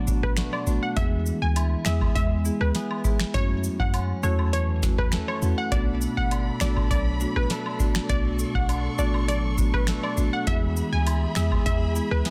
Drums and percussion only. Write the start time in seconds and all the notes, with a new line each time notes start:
0.07 kick, cabasa
0.23 kick, cross-stick
0.37 finger snap, snare, closed hi-hat
0.53 high woodblock
0.67 cabasa
0.97 kick, closed hi-hat
1.26 cabasa
1.56 closed hi-hat, high woodblock
1.85 finger snap, snare, cabasa
2.01 kick, high woodblock
2.16 kick, closed hi-hat
2.45 cabasa
2.61 cross-stick
2.75 snare, closed hi-hat
2.91 high woodblock
3.04 kick, cabasa
3.20 finger snap, snare
3.34 kick, closed hi-hat
3.64 cabasa
3.80 kick
3.94 closed hi-hat, high woodblock
4.23 cabasa
4.39 high woodblock
4.53 closed hi-hat
4.83 kick, snare, cabasa
4.98 kick, cross-stick
5.12 finger snap, snare, closed hi-hat
5.28 high woodblock
5.42 cabasa
5.72 kick, closed hi-hat
6.01 cabasa
6.31 closed hi-hat, high woodblock
6.60 finger snap, snare, cabasa
6.77 kick, high woodblock
6.91 kick, closed hi-hat
7.20 cabasa
7.36 cross-stick
7.50 snare, closed hi-hat
7.66 high woodblock
7.80 kick, cabasa
7.95 finger snap, snare
8.09 kick, closed hi-hat
8.39 cabasa
8.55 kick
8.69 closed hi-hat, high woodblock
8.99 cabasa
9.14 high woodblock
9.28 closed hi-hat
9.58 kick, cabasa
9.74 kick, cross-stick
9.87 finger snap, snare, closed hi-hat
10.03 high woodblock
10.17 cabasa
10.47 kick, closed hi-hat
10.77 cabasa
11.07 closed hi-hat, high woodblock
11.35 finger snap, snare, cabasa
11.52 kick, high woodblock
11.66 kick, closed hi-hat
11.96 cabasa
12.11 cross-stick
12.25 snare, closed hi-hat